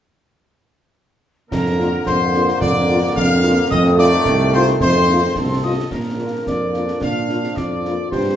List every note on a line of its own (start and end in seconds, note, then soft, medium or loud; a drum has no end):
1.49 1.97 F2 loud
1.49 3.67 D3 medium
1.49 3.66 A#3 medium
1.49 2.02 A#4 loud
1.49 2.02 A#5 medium
1.49 concert bass drum medium
1.49 snare medium
1.49 crash medium
1.66 snare medium
1.78 1.88 A#3 medium
1.78 1.88 D4 medium
1.78 1.88 F4 medium
1.78 snare medium
2.06 2.52 F2 medium
2.06 2.57 C5 loud
2.06 2.57 C6 medium
2.06 concert bass drum medium
2.06 snare medium
2.33 2.44 A#3 medium
2.33 2.44 D4 medium
2.33 2.43 F4 medium
2.33 snare medium
2.48 snare medium
2.60 3.06 F2 loud
2.60 3.12 D5 loud
2.60 3.12 D6 loud
2.60 concert bass drum medium
2.60 snare medium
2.88 2.99 A#3 medium
2.88 2.98 D4 medium
2.88 2.98 F4 medium
3.16 3.62 F2 loud
3.16 3.67 F5 loud
3.16 3.67 F6 loud
3.16 concert bass drum medium
3.16 snare medium
3.43 3.53 A#3 medium
3.43 3.53 D4 medium
3.43 3.53 F4 medium
3.70 4.16 F2 loud
3.70 5.59 D#3 loud
3.70 5.63 A3 loud
3.70 3.83 D#5 loud
3.70 3.96 D#6 loud
3.70 concert bass drum medium
3.70 snare medium
3.70 crash soft
3.85 snare medium
3.97 4.08 A3 medium
3.97 4.07 D#4 medium
3.97 4.08 F4 medium
3.97 4.50 D5 loud
3.97 4.55 D6 loud
3.97 snare medium
4.26 4.72 C2 loud
4.26 concert bass drum medium
4.26 snare medium
4.52 4.62 A3 medium
4.52 4.62 D#4 medium
4.52 4.63 F4 medium
4.52 4.66 C5 loud
4.52 4.80 C6 loud
4.52 snare medium
4.67 snare medium
4.81 5.27 F2 loud
4.81 5.32 C5 loud
4.81 5.60 C6 loud
4.81 concert bass drum medium
4.81 snare medium
5.08 5.18 A3 medium
5.08 5.18 D#4 medium
5.08 5.18 F4 medium
5.35 5.82 C2 medium
5.35 5.88 A4 medium
5.35 concert bass drum medium
5.35 snare medium
5.62 5.73 A3 medium
5.62 5.73 D#4 medium
5.62 5.73 F4 medium
5.62 5.92 D#5 medium
5.62 5.89 D#6 medium
5.90 6.37 A#2 medium
5.90 8.07 F3 medium
5.90 6.98 A#3 medium
5.90 8.07 D4 medium
5.90 6.43 A#4 medium
5.90 concert bass drum medium
5.90 snare medium
5.90 crash soft
6.18 6.28 A#3 soft
6.18 6.28 D4 soft
6.18 6.28 F4 soft
6.46 6.92 F2 medium
6.46 6.98 D5 medium
6.46 concert bass drum medium
6.46 snare medium
6.73 6.83 A#3 soft
6.73 6.83 D4 soft
6.73 6.83 F4 soft
6.73 snare soft
6.88 snare soft
7.01 7.47 A#2 medium
7.01 7.59 D4 medium
7.01 7.53 F5 medium
7.01 concert bass drum medium
7.01 snare medium
7.29 7.39 A#3 soft
7.29 7.39 D4 soft
7.29 7.39 F4 soft
7.29 snare soft
7.44 snare soft
7.56 7.97 F2 medium
7.56 8.11 F4 medium
7.56 8.11 D5 medium
7.56 concert bass drum medium
7.56 snare medium
7.84 7.94 A#3 medium
7.84 7.94 D4 medium
7.84 7.94 F4 medium
7.84 snare soft
8.11 8.36 G2 medium
8.11 8.36 G3 medium
8.11 8.36 D4 medium
8.11 8.36 G4 medium
8.11 8.36 C5 medium
8.11 concert bass drum medium
8.11 snare medium